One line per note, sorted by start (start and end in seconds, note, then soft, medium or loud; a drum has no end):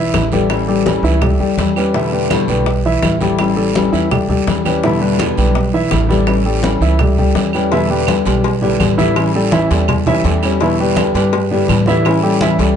0.00 0.10 B1 medium
0.00 0.25 E3 medium
0.00 0.26 E4 medium
0.00 0.26 E5 medium
0.14 0.98 A1 loud
0.14 0.31 D3 soft
0.14 0.32 G3 medium
0.14 0.32 B3 medium
0.14 0.31 E4 medium
0.14 high bongo medium
0.14 low bongo medium
0.14 high conga medium
0.14 short guiro medium
0.14 claves medium
0.32 0.50 D3 medium
0.32 0.62 G3 medium
0.32 0.50 G3 medium
0.32 0.50 B3 medium
0.32 0.50 E4 medium
0.32 0.62 G4 medium
0.32 0.62 A4 medium
0.32 high conga medium
0.32 short guiro medium
0.50 0.85 E3 medium
0.50 0.86 G3 medium
0.50 0.86 C#4 medium
0.50 0.86 E4 medium
0.50 high bongo medium
0.50 high conga soft
0.50 long guiro medium
0.50 claves medium
0.68 0.97 G3 medium
0.68 0.98 G4 medium
0.68 0.98 A4 medium
0.68 high bongo soft
0.68 high conga soft
0.86 1.20 E3 medium
0.86 1.21 G3 medium
0.86 1.21 C#4 medium
0.86 1.21 E4 medium
0.86 high bongo medium
0.86 high conga medium
0.86 short guiro medium
1.03 1.37 C#2 medium
1.03 1.19 E3 medium
1.03 1.19 E4 medium
1.03 1.19 E5 medium
1.03 high conga soft
1.03 short guiro medium
1.21 1.37 G3 medium
1.21 1.37 G4 medium
1.21 1.37 A4 medium
1.21 muted nylon-string guitar stroke medium
1.21 high bongo medium
1.21 high conga soft
1.21 low conga medium
1.21 long guiro medium
1.21 claves medium
1.40 1.57 D2 medium
1.40 1.69 G3 medium
1.40 1.70 G4 medium
1.40 1.70 A4 medium
1.40 high bongo soft
1.40 high conga soft
1.58 2.42 E2 medium
1.58 1.76 E3 soft
1.58 1.76 G3 medium
1.58 1.76 C#4 soft
1.58 1.75 E4 medium
1.58 high bongo medium
1.58 low bongo medium
1.58 high conga medium
1.58 short guiro medium
1.76 1.91 G3 medium
1.76 1.93 G3 medium
1.76 1.94 C#4 medium
1.76 1.94 E4 medium
1.76 1.91 G4 medium
1.76 1.91 B4 medium
1.76 high bongo soft
1.76 short guiro medium
1.76 claves medium
1.94 2.29 B2 medium
1.94 2.30 D3 medium
1.94 2.09 E3 medium
1.94 2.30 G3 medium
1.94 2.30 B3 medium
1.94 2.09 E4 medium
1.94 2.30 E4 medium
1.94 2.09 E5 medium
1.94 high bongo medium
1.94 high conga soft
1.94 long guiro medium
2.12 2.42 G3 medium
2.12 2.42 G4 medium
2.12 2.42 B4 medium
2.12 high conga soft
2.30 2.65 B2 medium
2.30 2.66 D3 medium
2.30 2.66 G3 medium
2.30 2.66 B3 medium
2.30 2.66 E4 medium
2.30 high bongo medium
2.30 high conga medium
2.30 short guiro medium
2.30 claves medium
2.48 2.99 B1 medium
2.48 2.78 G3 medium
2.48 2.79 G4 medium
2.48 2.79 B4 medium
2.48 high conga soft
2.48 short guiro medium
2.66 muted nylon-string guitar stroke medium
2.66 high bongo medium
2.66 high conga soft
2.66 long guiro medium
2.85 3.15 E3 medium
2.85 3.15 E4 medium
2.85 3.15 E5 medium
2.85 high conga soft
3.02 3.87 A1 medium
3.02 3.20 D3 soft
3.02 3.20 G3 soft
3.02 3.20 B3 medium
3.02 3.19 E4 medium
3.02 high bongo medium
3.02 low bongo medium
3.02 high conga medium
3.02 short guiro medium
3.02 claves medium
3.20 3.38 D3 medium
3.20 3.50 G3 medium
3.20 3.38 G3 medium
3.20 3.38 B3 medium
3.20 3.38 E4 medium
3.20 3.51 G4 medium
3.20 3.51 A4 medium
3.20 high conga medium
3.20 short guiro medium
3.38 3.73 E3 medium
3.38 3.74 G3 medium
3.38 3.74 C#4 medium
3.38 3.75 E4 medium
3.38 high bongo medium
3.38 high conga soft
3.38 long guiro medium
3.38 claves medium
3.56 3.86 G3 medium
3.56 3.86 G4 medium
3.56 3.86 A4 medium
3.56 high bongo soft
3.56 high conga soft
3.74 4.10 E3 medium
3.74 4.10 G3 medium
3.74 4.11 C#4 medium
3.74 4.11 E4 medium
3.74 high bongo medium
3.74 high conga medium
3.74 short guiro medium
3.92 4.26 E2 medium
3.92 4.07 E3 medium
3.92 4.07 E4 medium
3.92 4.08 E5 medium
3.92 high conga soft
3.92 short guiro medium
4.11 4.26 G3 medium
4.11 4.26 G4 medium
4.11 4.26 A4 medium
4.11 muted nylon-string guitar stroke medium
4.11 high bongo medium
4.11 high conga soft
4.11 low conga medium
4.11 long guiro medium
4.11 claves medium
4.28 4.45 D2 medium
4.28 4.58 G3 medium
4.28 4.59 G4 medium
4.28 4.59 A4 medium
4.28 high bongo soft
4.28 high conga soft
4.28 low conga medium
4.47 5.31 E2 medium
4.47 4.65 E3 soft
4.47 4.65 G3 medium
4.47 4.65 C#4 medium
4.47 4.65 E4 medium
4.47 high bongo medium
4.47 low bongo medium
4.47 high conga medium
4.47 short guiro medium
4.65 4.80 G3 medium
4.65 4.84 G3 medium
4.65 4.84 C#4 medium
4.65 4.83 E4 medium
4.65 4.80 G4 medium
4.65 4.80 B4 medium
4.65 high bongo soft
4.65 high conga medium
4.65 short guiro medium
4.65 claves medium
4.84 5.18 B2 medium
4.84 5.19 D3 medium
4.84 4.98 E3 medium
4.84 5.19 G3 medium
4.84 5.20 B3 medium
4.84 4.98 E4 medium
4.84 5.20 E4 medium
4.84 4.98 E5 medium
4.84 high bongo medium
4.84 high conga soft
4.84 long guiro medium
5.01 5.31 G3 medium
5.01 5.31 G4 medium
5.01 5.31 B4 medium
5.01 high conga soft
5.19 5.55 B2 medium
5.19 5.55 D3 medium
5.19 5.55 G3 medium
5.19 5.56 B3 medium
5.19 5.56 E4 medium
5.19 high bongo medium
5.19 high conga medium
5.19 short guiro medium
5.19 claves medium
5.37 5.88 B1 medium
5.37 5.67 G3 medium
5.37 5.68 G4 medium
5.37 5.68 B4 medium
5.37 high conga soft
5.37 short guiro medium
5.55 muted nylon-string guitar stroke medium
5.55 high bongo medium
5.55 high conga soft
5.55 long guiro medium
5.73 6.03 E3 medium
5.73 6.03 E4 medium
5.73 6.04 E5 medium
5.73 high conga soft
5.91 6.76 A1 medium
5.91 6.09 D3 soft
5.91 6.09 G3 medium
5.91 6.08 B3 medium
5.91 6.07 E4 medium
5.91 high bongo medium
5.91 low bongo medium
5.91 high conga medium
5.91 short guiro medium
5.91 claves medium
6.09 6.27 D3 medium
6.09 6.39 G3 medium
6.09 6.27 G3 medium
6.09 6.27 B3 medium
6.09 6.26 E4 medium
6.09 6.39 G4 medium
6.09 6.39 A4 medium
6.09 high conga medium
6.09 short guiro medium
6.27 6.62 E3 medium
6.27 6.63 G3 medium
6.27 6.63 C#4 medium
6.27 6.64 E4 medium
6.27 high bongo medium
6.27 high conga soft
6.27 long guiro medium
6.27 claves medium
6.45 6.75 G3 medium
6.45 6.75 G4 medium
6.45 6.75 A4 medium
6.45 high bongo soft
6.45 high conga soft
6.63 6.99 E3 medium
6.63 6.99 G3 medium
6.63 6.99 C#4 medium
6.63 6.99 E4 medium
6.63 high bongo medium
6.63 high conga medium
6.63 short guiro medium
6.81 7.32 C#2 medium
6.81 6.96 E3 medium
6.81 6.97 E4 medium
6.81 6.97 E5 medium
6.81 high conga soft
6.81 short guiro medium
6.99 7.15 G3 medium
6.99 7.15 G4 medium
6.99 7.15 A4 medium
6.99 muted nylon-string guitar stroke medium
6.99 high bongo medium
6.99 high conga soft
6.99 low conga medium
6.99 long guiro medium
6.99 claves medium
7.18 7.48 G3 medium
7.18 7.48 G4 medium
7.18 7.48 A4 medium
7.18 high bongo soft
7.18 high conga soft
7.18 low conga medium
7.35 8.20 E2 medium
7.35 7.53 E3 medium
7.35 7.54 G3 soft
7.35 7.54 C#4 medium
7.35 7.53 E4 medium
7.35 high bongo medium
7.35 low bongo medium
7.35 high conga medium
7.35 short guiro medium
7.53 7.69 G3 medium
7.53 7.71 G3 medium
7.53 7.72 C#4 medium
7.53 7.71 E4 medium
7.53 7.69 G4 medium
7.53 7.69 B4 medium
7.53 high bongo soft
7.53 short guiro medium
7.53 claves medium
7.72 8.07 B2 medium
7.72 8.06 D3 medium
7.72 7.87 E3 medium
7.72 8.07 G3 medium
7.72 8.08 B3 medium
7.72 7.87 E4 medium
7.72 8.08 E4 medium
7.72 7.87 E5 medium
7.72 cowbell loud
7.72 high conga soft
7.72 long guiro medium
7.90 8.19 G3 medium
7.90 8.20 G4 medium
7.90 8.20 B4 medium
7.90 high conga soft
8.07 8.43 D3 soft
8.07 8.44 G3 medium
8.07 8.44 B3 medium
8.07 8.44 E4 medium
8.07 cowbell medium
8.07 high conga medium
8.07 short guiro medium
8.07 claves medium
8.25 8.76 B1 medium
8.25 8.56 G3 medium
8.25 8.56 G4 medium
8.25 8.56 B4 medium
8.25 cowbell medium
8.25 high conga soft
8.25 short guiro medium
8.44 muted nylon-string guitar stroke medium
8.44 cowbell loud
8.44 high conga soft
8.44 long guiro medium
8.62 8.79 D3 medium
8.62 8.91 G3 medium
8.62 8.79 G3 medium
8.62 8.80 B3 medium
8.62 8.79 E4 medium
8.62 8.92 G4 medium
8.62 8.92 B4 medium
8.62 high conga soft
8.80 9.64 A1 loud
8.80 8.97 D3 soft
8.80 8.98 G3 medium
8.80 8.97 B3 medium
8.80 8.96 E4 medium
8.80 cowbell medium
8.80 high conga medium
8.80 short guiro medium
8.80 claves medium
8.97 9.15 D3 medium
8.97 9.28 E3 medium
8.97 9.15 G3 medium
8.97 9.15 B3 medium
8.97 9.15 E4 medium
8.97 9.28 E4 loud
8.97 9.28 E5 medium
8.97 high conga medium
8.97 short guiro medium
9.16 9.51 E3 medium
9.16 9.52 G3 medium
9.16 9.52 C#4 medium
9.16 9.52 E4 medium
9.16 cowbell loud
9.16 high conga soft
9.16 long guiro medium
9.16 claves medium
9.34 9.49 G3 medium
9.34 9.50 G4 medium
9.34 9.50 A4 medium
9.34 high conga soft
9.52 9.67 E3 medium
9.52 9.88 E3 medium
9.52 9.88 G3 medium
9.52 9.88 C#4 medium
9.52 9.67 E4 medium
9.52 9.88 E4 medium
9.52 9.67 E5 medium
9.52 cowbell medium
9.52 high conga loud
9.52 short guiro medium
9.70 10.21 E2 loud
9.70 10.00 G3 medium
9.70 10.00 G4 medium
9.70 10.01 A4 medium
9.70 cowbell medium
9.70 high conga soft
9.70 short guiro medium
9.88 muted nylon-string guitar stroke medium
9.88 cowbell loud
9.88 high conga soft
9.88 low conga medium
9.88 long guiro medium
9.88 claves medium
10.06 10.21 E3 medium
10.06 10.25 G3 medium
10.06 10.25 C#4 medium
10.06 10.21 E4 medium
10.06 10.24 E4 medium
10.06 10.22 E5 medium
10.06 cowbell medium
10.06 high conga soft
10.06 low conga medium
10.24 11.09 E2 loud
10.24 10.42 E3 medium
10.24 10.54 G3 medium
10.24 10.42 G3 medium
10.24 10.43 C#4 medium
10.24 10.42 E4 medium
10.24 10.54 G4 medium
10.24 10.54 A4 medium
10.24 cowbell medium
10.24 high conga medium
10.24 short guiro medium
10.42 10.61 G3 medium
10.42 10.61 C#4 medium
10.42 10.60 E4 medium
10.42 short guiro medium
10.42 claves medium
10.60 10.96 B2 medium
10.60 10.96 D3 medium
10.60 10.76 E3 medium
10.60 10.96 G3 medium
10.60 10.97 B3 medium
10.60 10.76 E4 medium
10.60 10.97 E4 medium
10.60 10.76 E5 medium
10.60 cowbell loud
10.60 high conga soft
10.60 long guiro medium
10.79 11.09 G3 medium
10.79 11.09 G4 medium
10.79 11.09 B4 medium
10.79 high conga soft
10.97 11.32 D3 medium
10.97 11.32 G3 medium
10.97 11.33 B3 medium
10.97 11.33 E4 medium
10.97 cowbell medium
10.97 high conga medium
10.97 short guiro medium
10.97 claves medium
11.14 11.65 G2 medium
11.14 11.44 G3 medium
11.14 11.45 G4 medium
11.14 11.45 B4 medium
11.14 cowbell medium
11.14 high conga soft
11.14 short guiro medium
11.33 muted nylon-string guitar stroke medium
11.33 cowbell loud
11.33 high conga soft
11.33 long guiro medium
11.51 11.69 D3 medium
11.51 11.80 G3 medium
11.51 11.69 G3 medium
11.51 11.69 B3 medium
11.51 11.68 E4 medium
11.51 11.81 G4 medium
11.51 11.81 B4 medium
11.51 high conga soft
11.68 12.53 A2 loud
11.68 11.87 D3 medium
11.68 11.87 G3 medium
11.68 11.87 B3 medium
11.68 11.87 E4 medium
11.68 cowbell medium
11.68 high conga medium
11.68 short guiro medium
11.68 claves medium
11.86 12.16 E3 medium
11.86 12.05 G3 medium
11.86 12.05 B3 medium
11.86 12.17 E4 medium
11.86 12.05 E4 medium
11.86 12.17 E5 medium
11.86 high conga medium
11.86 short guiro medium
11.90 12.06 D3 medium
12.05 12.41 E3 medium
12.05 12.41 G3 medium
12.05 12.42 C#4 medium
12.05 12.42 E4 medium
12.05 cowbell loud
12.05 high conga soft
12.05 long guiro medium
12.05 claves medium
12.23 12.38 G3 medium
12.23 12.38 G4 medium
12.23 12.38 A4 medium
12.23 high conga soft
12.41 12.56 E3 medium
12.41 12.76 E3 medium
12.41 12.76 G3 medium
12.41 12.76 C#4 medium
12.41 12.56 E4 medium
12.41 12.76 E4 medium
12.41 12.56 E5 medium
12.41 cowbell medium
12.41 high conga medium
12.41 short guiro medium
12.59 12.76 C#2 medium
12.59 12.76 G3 medium
12.59 12.76 G4 medium
12.59 12.76 A4 medium
12.59 cowbell medium
12.59 high conga soft
12.59 short guiro medium